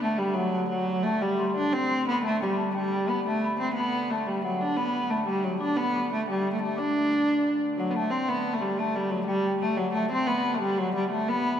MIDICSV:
0, 0, Header, 1, 4, 480
1, 0, Start_track
1, 0, Tempo, 338219
1, 1019, Time_signature, 6, 3, 24, 8
1, 7733, Tempo, 333333
1, 16589, End_track
2, 0, Start_track
2, 0, Title_t, "Celesta"
2, 0, Program_c, 0, 8
2, 66, Note_on_c, 0, 81, 81
2, 172, Note_off_c, 0, 81, 0
2, 298, Note_on_c, 0, 79, 73
2, 521, Note_off_c, 0, 79, 0
2, 530, Note_on_c, 0, 78, 80
2, 1003, Note_off_c, 0, 78, 0
2, 1020, Note_on_c, 0, 78, 71
2, 1468, Note_off_c, 0, 78, 0
2, 1508, Note_on_c, 0, 81, 82
2, 1724, Note_on_c, 0, 79, 74
2, 1728, Note_off_c, 0, 81, 0
2, 1836, Note_off_c, 0, 79, 0
2, 1969, Note_on_c, 0, 84, 83
2, 2452, Note_off_c, 0, 84, 0
2, 2469, Note_on_c, 0, 84, 80
2, 2697, Note_off_c, 0, 84, 0
2, 2714, Note_on_c, 0, 84, 78
2, 2933, Note_off_c, 0, 84, 0
2, 2940, Note_on_c, 0, 83, 88
2, 3165, Note_off_c, 0, 83, 0
2, 3185, Note_on_c, 0, 81, 80
2, 3413, Note_on_c, 0, 79, 74
2, 3432, Note_off_c, 0, 81, 0
2, 3642, Note_off_c, 0, 79, 0
2, 3650, Note_on_c, 0, 81, 77
2, 3880, Note_off_c, 0, 81, 0
2, 3895, Note_on_c, 0, 79, 80
2, 4372, Note_on_c, 0, 83, 76
2, 4394, Note_off_c, 0, 79, 0
2, 4625, Note_off_c, 0, 83, 0
2, 4640, Note_on_c, 0, 81, 74
2, 4855, Note_off_c, 0, 81, 0
2, 4887, Note_on_c, 0, 83, 84
2, 5321, Note_off_c, 0, 83, 0
2, 5366, Note_on_c, 0, 83, 77
2, 5844, Note_on_c, 0, 81, 79
2, 5847, Note_off_c, 0, 83, 0
2, 6079, Note_off_c, 0, 81, 0
2, 6087, Note_on_c, 0, 79, 72
2, 6304, Note_on_c, 0, 78, 73
2, 6319, Note_off_c, 0, 79, 0
2, 6384, Note_on_c, 0, 79, 56
2, 6387, Note_off_c, 0, 78, 0
2, 6480, Note_off_c, 0, 79, 0
2, 6490, Note_on_c, 0, 78, 76
2, 6760, Note_off_c, 0, 78, 0
2, 6763, Note_on_c, 0, 83, 78
2, 7239, Note_on_c, 0, 81, 75
2, 7262, Note_off_c, 0, 83, 0
2, 7278, Note_on_c, 0, 83, 68
2, 7308, Note_off_c, 0, 81, 0
2, 7342, Note_on_c, 0, 81, 78
2, 7355, Note_off_c, 0, 83, 0
2, 7481, Note_off_c, 0, 81, 0
2, 7481, Note_on_c, 0, 79, 73
2, 7933, Note_off_c, 0, 79, 0
2, 7959, Note_on_c, 0, 86, 78
2, 8210, Note_on_c, 0, 83, 80
2, 8215, Note_off_c, 0, 86, 0
2, 8928, Note_on_c, 0, 79, 68
2, 8959, Note_off_c, 0, 83, 0
2, 9397, Note_on_c, 0, 81, 72
2, 9431, Note_off_c, 0, 79, 0
2, 9628, Note_on_c, 0, 86, 69
2, 9633, Note_off_c, 0, 81, 0
2, 10792, Note_off_c, 0, 86, 0
2, 11113, Note_on_c, 0, 78, 86
2, 11346, Note_on_c, 0, 81, 87
2, 11358, Note_off_c, 0, 78, 0
2, 11581, Note_on_c, 0, 84, 88
2, 11595, Note_off_c, 0, 81, 0
2, 11832, Note_off_c, 0, 84, 0
2, 11837, Note_on_c, 0, 83, 88
2, 12168, Note_off_c, 0, 83, 0
2, 12214, Note_on_c, 0, 81, 77
2, 12541, Note_off_c, 0, 81, 0
2, 12558, Note_on_c, 0, 81, 84
2, 13254, Note_on_c, 0, 79, 85
2, 13294, Note_off_c, 0, 81, 0
2, 13504, Note_off_c, 0, 79, 0
2, 13522, Note_on_c, 0, 79, 78
2, 13737, Note_off_c, 0, 79, 0
2, 13745, Note_on_c, 0, 81, 88
2, 13853, Note_off_c, 0, 81, 0
2, 13977, Note_on_c, 0, 78, 76
2, 14223, Note_on_c, 0, 81, 89
2, 14228, Note_off_c, 0, 78, 0
2, 14470, Note_off_c, 0, 81, 0
2, 14474, Note_on_c, 0, 84, 92
2, 14692, Note_off_c, 0, 84, 0
2, 14710, Note_on_c, 0, 83, 87
2, 15071, Note_on_c, 0, 81, 71
2, 15076, Note_off_c, 0, 83, 0
2, 15123, Note_off_c, 0, 81, 0
2, 15193, Note_on_c, 0, 79, 81
2, 15433, Note_off_c, 0, 79, 0
2, 15445, Note_on_c, 0, 78, 80
2, 15895, Note_on_c, 0, 81, 84
2, 15924, Note_off_c, 0, 78, 0
2, 16117, Note_off_c, 0, 81, 0
2, 16139, Note_on_c, 0, 83, 80
2, 16359, Note_off_c, 0, 83, 0
2, 16395, Note_on_c, 0, 83, 77
2, 16589, Note_off_c, 0, 83, 0
2, 16589, End_track
3, 0, Start_track
3, 0, Title_t, "Viola da gamba"
3, 0, Program_c, 1, 42
3, 49, Note_on_c, 1, 57, 87
3, 257, Note_on_c, 1, 55, 86
3, 279, Note_off_c, 1, 57, 0
3, 484, Note_on_c, 1, 54, 90
3, 505, Note_off_c, 1, 55, 0
3, 978, Note_off_c, 1, 54, 0
3, 986, Note_on_c, 1, 54, 89
3, 1469, Note_on_c, 1, 57, 93
3, 1490, Note_off_c, 1, 54, 0
3, 1730, Note_on_c, 1, 55, 94
3, 1751, Note_off_c, 1, 57, 0
3, 2217, Note_off_c, 1, 55, 0
3, 2224, Note_on_c, 1, 62, 88
3, 2458, Note_on_c, 1, 60, 106
3, 2479, Note_off_c, 1, 62, 0
3, 2942, Note_off_c, 1, 60, 0
3, 2961, Note_on_c, 1, 59, 91
3, 3177, Note_off_c, 1, 59, 0
3, 3193, Note_on_c, 1, 57, 102
3, 3412, Note_off_c, 1, 57, 0
3, 3436, Note_on_c, 1, 55, 83
3, 3877, Note_off_c, 1, 55, 0
3, 3914, Note_on_c, 1, 55, 90
3, 4387, Note_on_c, 1, 59, 85
3, 4409, Note_off_c, 1, 55, 0
3, 4625, Note_off_c, 1, 59, 0
3, 4646, Note_on_c, 1, 57, 86
3, 5082, Note_off_c, 1, 57, 0
3, 5107, Note_on_c, 1, 60, 87
3, 5312, Note_off_c, 1, 60, 0
3, 5320, Note_on_c, 1, 59, 93
3, 5826, Note_on_c, 1, 57, 81
3, 5847, Note_off_c, 1, 59, 0
3, 6068, Note_on_c, 1, 55, 88
3, 6089, Note_off_c, 1, 57, 0
3, 6303, Note_off_c, 1, 55, 0
3, 6320, Note_on_c, 1, 54, 75
3, 6549, Note_on_c, 1, 62, 81
3, 6570, Note_off_c, 1, 54, 0
3, 6765, Note_on_c, 1, 59, 91
3, 6786, Note_off_c, 1, 62, 0
3, 7242, Note_on_c, 1, 57, 78
3, 7263, Note_off_c, 1, 59, 0
3, 7467, Note_off_c, 1, 57, 0
3, 7475, Note_on_c, 1, 55, 84
3, 7729, Note_on_c, 1, 54, 79
3, 7751, Note_off_c, 1, 55, 0
3, 7958, Note_off_c, 1, 54, 0
3, 7967, Note_on_c, 1, 62, 87
3, 8201, Note_on_c, 1, 59, 98
3, 8223, Note_off_c, 1, 62, 0
3, 8691, Note_off_c, 1, 59, 0
3, 8716, Note_on_c, 1, 57, 81
3, 8932, Note_off_c, 1, 57, 0
3, 8958, Note_on_c, 1, 55, 85
3, 9286, Note_off_c, 1, 55, 0
3, 9294, Note_on_c, 1, 57, 74
3, 9410, Note_off_c, 1, 57, 0
3, 9428, Note_on_c, 1, 57, 79
3, 9659, Note_on_c, 1, 62, 93
3, 9681, Note_off_c, 1, 57, 0
3, 10865, Note_off_c, 1, 62, 0
3, 11088, Note_on_c, 1, 54, 80
3, 11280, Note_on_c, 1, 59, 58
3, 11301, Note_off_c, 1, 54, 0
3, 11334, Note_on_c, 1, 57, 90
3, 11356, Note_off_c, 1, 59, 0
3, 11562, Note_on_c, 1, 60, 89
3, 11584, Note_off_c, 1, 57, 0
3, 11823, Note_on_c, 1, 59, 91
3, 11844, Note_off_c, 1, 60, 0
3, 12181, Note_on_c, 1, 57, 83
3, 12203, Note_off_c, 1, 59, 0
3, 12293, Note_on_c, 1, 55, 83
3, 12315, Note_off_c, 1, 57, 0
3, 12542, Note_on_c, 1, 57, 90
3, 12563, Note_off_c, 1, 55, 0
3, 12784, Note_on_c, 1, 55, 89
3, 12806, Note_off_c, 1, 57, 0
3, 12994, Note_on_c, 1, 54, 84
3, 13016, Note_off_c, 1, 55, 0
3, 13217, Note_off_c, 1, 54, 0
3, 13226, Note_on_c, 1, 55, 92
3, 13691, Note_off_c, 1, 55, 0
3, 13733, Note_on_c, 1, 57, 82
3, 13964, Note_on_c, 1, 54, 91
3, 13986, Note_off_c, 1, 57, 0
3, 14197, Note_off_c, 1, 54, 0
3, 14206, Note_on_c, 1, 57, 89
3, 14437, Note_off_c, 1, 57, 0
3, 14460, Note_on_c, 1, 60, 92
3, 14675, Note_on_c, 1, 59, 104
3, 14697, Note_off_c, 1, 60, 0
3, 15075, Note_on_c, 1, 57, 87
3, 15096, Note_off_c, 1, 59, 0
3, 15162, Note_off_c, 1, 57, 0
3, 15171, Note_on_c, 1, 55, 87
3, 15414, Note_on_c, 1, 54, 99
3, 15436, Note_off_c, 1, 55, 0
3, 15652, Note_off_c, 1, 54, 0
3, 15660, Note_on_c, 1, 55, 87
3, 15875, Note_off_c, 1, 55, 0
3, 15884, Note_on_c, 1, 57, 88
3, 16145, Note_on_c, 1, 59, 101
3, 16166, Note_off_c, 1, 57, 0
3, 16589, Note_off_c, 1, 59, 0
3, 16589, End_track
4, 0, Start_track
4, 0, Title_t, "Hurdy-gurdy"
4, 0, Program_c, 2, 110
4, 0, Note_on_c, 2, 50, 73
4, 0, Note_on_c, 2, 57, 70
4, 5346, Note_off_c, 2, 50, 0
4, 5346, Note_on_c, 2, 50, 70
4, 5351, Note_off_c, 2, 57, 0
4, 5351, Note_on_c, 2, 57, 66
4, 11095, Note_off_c, 2, 57, 0
4, 11095, Note_on_c, 2, 57, 77
4, 11108, Note_off_c, 2, 50, 0
4, 11108, Note_on_c, 2, 50, 71
4, 16589, Note_off_c, 2, 50, 0
4, 16589, Note_off_c, 2, 57, 0
4, 16589, End_track
0, 0, End_of_file